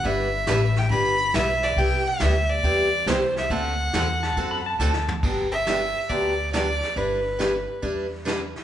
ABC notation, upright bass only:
X:1
M:4/4
L:1/8
Q:"Swing" 1/4=139
K:G
V:1 name="Upright bass" clef=bass
G,,,2 A,,,2 G,,,2 B,,,2 | C,,2 D,,2 E,,2 C,,2 | D,,2 E,,2 F,,2 D,,2 | G,,,4 D,,4 |
G,,,4 E,,4 |]